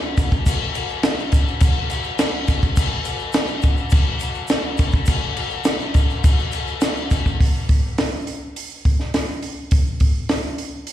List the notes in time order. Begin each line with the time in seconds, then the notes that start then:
0.17 kick, crash, shaker
0.31 kick, shaker
0.46 kick, crash, shaker
0.75 crash, shaker
0.89 shaker
1.03 snare, crash, shaker
1.19 shaker
1.32 kick, crash, shaker
1.48 shaker
1.60 kick, crash, shaker
1.90 crash, shaker
2.04 shaker
2.19 snare, crash, shaker
2.48 kick, crash, shaker
2.62 kick, shaker
2.76 kick, crash, shaker
3.05 crash, shaker
3.19 shaker
3.33 snare, crash, shaker
3.47 shaker
3.62 kick, crash, shaker
3.77 shaker
3.90 kick, crash, shaker
4.20 crash, shaker
4.35 shaker
4.47 snare, crash, shaker
4.78 kick, crash, shaker
4.92 kick, shaker
5.06 kick, crash, shaker
5.37 crash
5.50 shaker
5.64 snare, crash, shaker
5.80 shaker
5.94 kick, crash, shaker
6.10 shaker
6.24 kick, crash, shaker
6.39 shaker
6.52 crash, shaker
6.67 shaker
6.81 snare, crash, shaker
6.97 shaker
7.11 kick, crash, shaker
7.26 kick, shaker
7.40 kick, open hi-hat
7.69 kick, open hi-hat
7.98 snare, open hi-hat
8.27 open hi-hat
8.56 open hi-hat
8.85 kick, open hi-hat
9.00 snare
9.14 snare, open hi-hat
9.42 open hi-hat
9.71 kick, open hi-hat
10.00 kick, open hi-hat
10.29 snare, open hi-hat
10.58 open hi-hat
10.87 open hi-hat